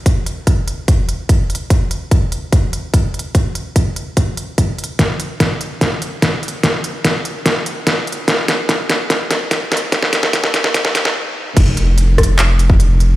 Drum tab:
CC |--------------------------------|--------------------------------|--------------------------------|--------------------------------|
HH |x---x---x---x---x---x---x---xx--|x---x---x---x---x---x---x---xx--|x---x---x---x---x---x---x---xx--|x---x---x---x---x---x---x---xx--|
CP |--------------------------------|--------------------------------|--------------------------------|--------------------------------|
SD |--------------------------------|--------------------------------|--------------------------------|o-------o-------o-------o-------|
BD |o-------o-------o-------o-------|o-------o-------o-------o-------|o-------o-------o-------o-------|o-------o-------o-------o-------|

CC |--------------------------------|--------------------------------|--------------------------------|x-------------------------------|
HH |x---x---x---x---x---x---x---xx--|x---x---x---x---x---x---x---xx--|x---x---x---x---x---x-----------|x---x---x---xx--x---x---x---x---|
CP |--------------------------------|--------------------------------|--------------------------------|----------------x---------------|
SD |o-------o-------o-------o-------|o---o---o---o---o---o---o---o---|o-o-o-o-o-o-o-o-o-o-o-o---------|------------r-------------------|
BD |o-------o-------o-------o-------|o-------o-------o-------o-------|o-------o-------o---------------|o-----------o---------o---------|